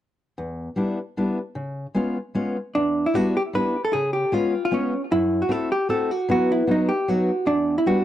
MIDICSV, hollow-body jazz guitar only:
0, 0, Header, 1, 2, 480
1, 0, Start_track
1, 0, Key_signature, 1, "minor"
1, 0, Tempo, 395257
1, 465, Time_signature, 3, 2, 24, 8
1, 9770, End_track
2, 0, Start_track
2, 0, Title_t, "Hollow-body jazz guitar"
2, 0, Program_c, 0, 26
2, 3340, Note_on_c, 0, 62, 64
2, 3721, Note_on_c, 0, 64, 57
2, 3722, Note_off_c, 0, 62, 0
2, 3826, Note_off_c, 0, 64, 0
2, 3826, Note_on_c, 0, 66, 65
2, 4084, Note_off_c, 0, 66, 0
2, 4090, Note_on_c, 0, 67, 67
2, 4152, Note_off_c, 0, 67, 0
2, 4313, Note_on_c, 0, 71, 81
2, 4665, Note_off_c, 0, 71, 0
2, 4670, Note_on_c, 0, 69, 70
2, 4772, Note_on_c, 0, 68, 81
2, 4794, Note_off_c, 0, 69, 0
2, 5011, Note_off_c, 0, 68, 0
2, 5016, Note_on_c, 0, 67, 57
2, 5267, Note_off_c, 0, 67, 0
2, 5267, Note_on_c, 0, 65, 73
2, 5632, Note_off_c, 0, 65, 0
2, 5647, Note_on_c, 0, 65, 69
2, 5755, Note_on_c, 0, 61, 64
2, 5757, Note_off_c, 0, 65, 0
2, 6083, Note_off_c, 0, 61, 0
2, 6216, Note_on_c, 0, 64, 83
2, 6581, Note_on_c, 0, 66, 62
2, 6588, Note_off_c, 0, 64, 0
2, 6697, Note_off_c, 0, 66, 0
2, 6697, Note_on_c, 0, 69, 73
2, 6940, Note_off_c, 0, 69, 0
2, 6945, Note_on_c, 0, 67, 68
2, 7160, Note_off_c, 0, 67, 0
2, 7165, Note_on_c, 0, 69, 73
2, 7421, Note_off_c, 0, 69, 0
2, 7421, Note_on_c, 0, 66, 72
2, 7654, Note_off_c, 0, 66, 0
2, 7669, Note_on_c, 0, 66, 78
2, 7913, Note_off_c, 0, 66, 0
2, 7914, Note_on_c, 0, 64, 66
2, 8146, Note_off_c, 0, 64, 0
2, 8151, Note_on_c, 0, 63, 60
2, 8363, Note_on_c, 0, 67, 75
2, 8394, Note_off_c, 0, 63, 0
2, 8612, Note_off_c, 0, 67, 0
2, 8612, Note_on_c, 0, 66, 74
2, 9071, Note_on_c, 0, 62, 77
2, 9110, Note_off_c, 0, 66, 0
2, 9443, Note_off_c, 0, 62, 0
2, 9448, Note_on_c, 0, 64, 66
2, 9558, Note_on_c, 0, 66, 76
2, 9575, Note_off_c, 0, 64, 0
2, 9770, Note_off_c, 0, 66, 0
2, 9770, End_track
0, 0, End_of_file